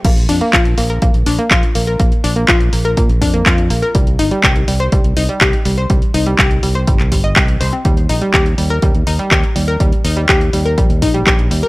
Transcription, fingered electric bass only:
\new Staff \with { instrumentName = "Fingered electric bass" } { \clef bass \time 4/4 \key c \dorian \tempo 4 = 123 bes,,8 f,16 r16 bes,,8 bes,,8 bes,,16 bes,,16 bes,,16 r16 bes,,16 r16 bes,,8 | bes,,16 r16 bes,,8 bes,,8 bes,,8 bes,16 bes,,16 f,8 f,8 bes,,16 r16 | c,8 g,,16 r16 c,8 c,8 c,16 c,16 c,16 r16 c,16 r16 c,8 | c,16 r16 c,8 c,8 c,8 g,,16 c,16 g,,8 c,8 c,16 r16 |
ees,8 bes,,16 r16 ees,8 ees,8 ees,16 ees,16 ees,16 r16 ees,16 r16 ees,8 | ees,16 r16 ees,8 ees,8 ees,8 bes,,16 ees,16 bes,,8 bes,,8 ees,16 r16 | }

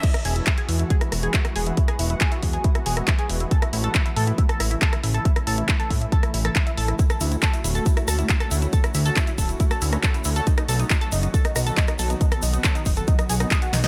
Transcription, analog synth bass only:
\new Staff \with { instrumentName = "Analog synth bass" } { \clef bass \time 4/4 \key e \major \tempo 4 = 138 r8 e,,8 r8 e,8 r8 e,,8 r8 e,,8 | r8 e,,8 r8 e,8 r8 e,,8 r8 e,,8 | r8 a,,8 r8 a,8 r8 a,,8 r8 a,,8 | r8 a,,8 r8 a,8 r8 a,,8 r8 a,,8 |
r8 d,8 r8 d,,8 r8 d,8 r8 d,8 | r8 d,8 r8 d,,8 r8 d,8 r8 d,8 | r8 b,,8 r8 fis,,8 r8 b,,8 r8 b,,8 | r8 b,,8 r8 fis,,8 r8 b,,8 r8 b,,8 | }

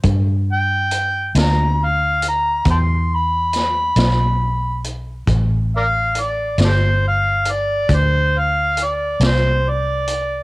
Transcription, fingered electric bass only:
\new Staff \with { instrumentName = "Fingered electric bass" } { \clef bass \time 12/8 \key g \mixolydian \tempo 4. = 46 g,4. d,4. e,4. b,,4. | a,,4. g,,4. d,4. c,4. | }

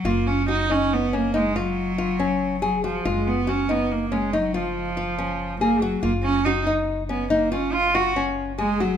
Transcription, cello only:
\new Staff \with { instrumentName = "Cello" } { \time 7/4 \key fis \major \tempo 4 = 140 ais8 cis'8 dis'8 cis'8 b8 ais8 gis8 fis2~ fis8 fis8 eis8 | gis8 b8 cis'8 b8 ais8 gis8 fis8 eis2~ eis8 ais8 fis8 | ais8 cis'8 dis'8 r4 b8 ais8 cis'8 eis'8 fis'8 r4 gis8 fis8 | }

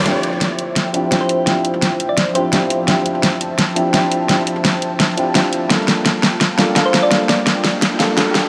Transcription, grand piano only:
\new Staff \with { instrumentName = "Grand piano" } { \time 4/4 \key g \dorian \tempo 4 = 170 <f c' d' e' g'>2~ <f c' d' e' g'>8 <f c' d' e' g'>8 <f c' d' e' g'>4 | <f c' d' e' g'>2~ <f c' d' e' g'>8 <f c' d' e' g'>8 <f c' d' e' g'>4 | <f c' d' e' g'>2~ <f c' d' e' g'>8 <f c' d' e' g'>8 <f c' d' e' g'>4 | <f c' d' e' g'>2~ <f c' d' e' g'>8 <f c' d' e' g'>8 <f c' d' e' g'>4 |
<g bes d' f' a'>2~ <g bes d' f' a'>8 <g bes d' f' a'>8 <g bes d' f' a'>4 | <g bes d' f' a'>2~ <g bes d' f' a'>8 <g bes d' f' a'>8 <g bes d' f' a'>4 | }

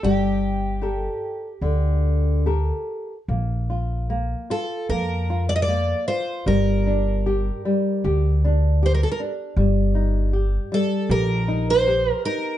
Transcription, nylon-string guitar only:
\new Staff \with { instrumentName = "Nylon-string guitar" } { \time 4/4 \key g \minor \tempo 4 = 76 g4 <g' a' bes'>4 d4 <g' a' bes'>4 | \key bes \major bes8 f'8 bes8 f'8 bes8 f'8 bes8 f'8 | g8 d'8 g'8 g8 g'8 d'8 g'8 d'8 | g8 ees'8 g'8 g8 g'8 ees'8 g'8 ees'8 | }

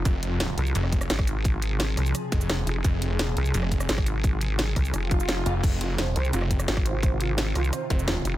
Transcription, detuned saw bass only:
\new Staff \with { instrumentName = "Detuned saw bass" } { \clef bass \time 4/4 \key f \minor \tempo 4 = 172 f,,4. r8 f,,4 r4 | r2 r8 f,,4 r8 | f,,4. r8 f,,4 r4 | r2. r8 f,,8 |
f,,4. r8 f,,4 r4 | r2 r8 f,,4 r8 | }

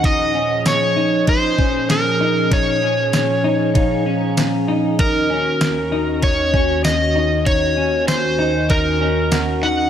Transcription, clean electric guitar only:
\new Staff \with { instrumentName = "Clean electric guitar" } { \time 4/4 \key ees \dorian \tempo 4 = 97 ees'8 des'4 ees'8 ees'8 des'4 ees'8 | ees'8 des'4 ees'8 ees'8 des'4 ees'8 | ees'8 des'4 ees'8 ees'8 des'4 ees'8 | ees'8 des'4 ees'8 ees'8 des'4 ees'8 | }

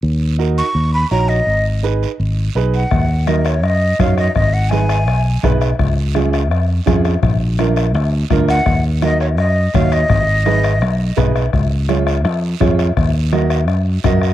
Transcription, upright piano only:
\new Staff \with { instrumentName = "Upright piano" } { \time 4/4 \key ees \minor \tempo 4 = 167 r4 <ees' ges' bes'>8 r4. <ees' ges' des''>8 r8 | r4 <ees' aes' ces''>8 r4. <ees' aes' ces''>8 r8 | r4 <ees' ges' bes'>8 r4. <ees' ges' des''>8 r8 | r4 <ees' aes' ces''>8 r4. <ees' aes' ces''>8 r8 |
r4 <des' f' aes'>8 r4. <des' f' aes'>8 r8 | r4 <d' f' bes'>8 r4. <d' f' bes'>8 r8 | r4 <ees' ges' bes'>8 r4. <ees' ges' des''>8 r8 | r4 <ees' aes' ces''>8 r4. <ees' aes' ces''>8 r8 |
r4 <f' aes' des''>8 r4. <f' aes' des''>8 r8 | r4 <ges' bes' ees''>8 r4. <ges' bes' ees''>8 r8 | }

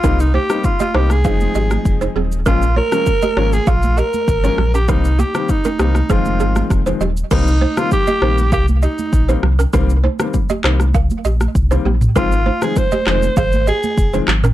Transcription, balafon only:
\new Staff \with { instrumentName = "Balafon" } { \time 4/4 \key c \phrygian \tempo 4 = 99 <ees' bes'>16 r16 <ees' c''>16 r8 <g' ees''>16 <ees' c''>16 r16 <aes' f''>16 r16 <g' ees''>16 r8 <ees' c''>16 <c' aes'>16 r16 | <des' bes'>16 r16 <f' des''>16 r8 <g' ees''>16 <f' des''>16 r16 <aes' f''>16 r16 <g' ees''>16 r8 <f' des''>16 r16 <des' bes'>16 | <ees' bes'>16 r16 <bes g'>16 r8 <des' bes'>16 <bes g'>16 r16 <c' aes'>16 r16 <c' aes'>16 r8 <ees' c''>16 <g' ees''>16 r16 | <ees' bes'>16 r16 <ees' c''>16 r8 <g' ees''>16 <ees' c''>16 r16 <bes' f''>16 r16 <g' ees''>16 r8 <ees' c''>16 r16 <des' bes'>16 |
<ees' bes'>16 r16 <ees' c''>16 r8 <g' ees''>16 <ees' c''>16 r16 <bes' f''>16 r16 <g' ees''>16 r8 <ees' c''>16 <bes g'>16 r16 | <ees' bes'>16 r16 <ees' c''>16 r8 <g' ees''>16 <ees' c''>16 r16 <aes' f''>16 r16 <g' ees''>16 r8 <ees' c''>16 r16 <des' bes'>16 | }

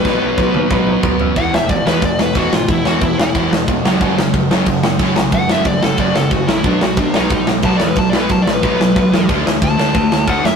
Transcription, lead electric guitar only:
\new Staff \with { instrumentName = "Lead electric guitar" } { \time 4/4 \key e \lydian \tempo 4 = 182 b'2. r4 | fis''8 e''8 d''8 b'8 d''8 b'8 fis'8 eis'8 | e'8 fis'8 e'8 e'4 r4. | r1 |
fis''8 e''8 d''8 a'8 d''8 a'8 fis'8 e'8 | d'8 fis'8 d'8 dis'4 r8 \tuplet 3/2 { a''8 d''8 b'8 } | \tuplet 3/2 { a''8 d''8 b'8 a''8 d''8 b'8 } b'2 | r4 a''2 fis''8 e''8 | }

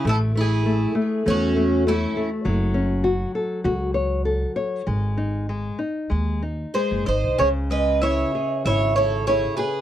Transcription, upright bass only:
\new Staff \with { instrumentName = "Upright bass" } { \clef bass \time 4/4 \key cis \minor \tempo 4 = 98 a,,2 e,2 | fis,,2 cis,2 | gis,,2 dis,4~ dis,16 fis,,16 gis,,16 bis,,16 | cis,2 gis,,2 | }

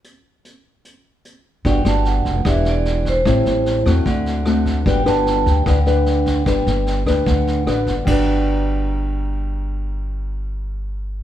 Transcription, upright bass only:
\new Staff \with { instrumentName = "Upright bass" } { \clef bass \time 4/4 \key g \major \tempo 4 = 149 r1 | g,,8 g,,4 f,,8 e,,2 | a,,8 a,,4 e,8 d,2 | g,,8 g,,4 d,8 d,2 |
g,,8 g,,4 d,8 d,4 a,,8 g,,8 | g,,1~ | g,,1 | }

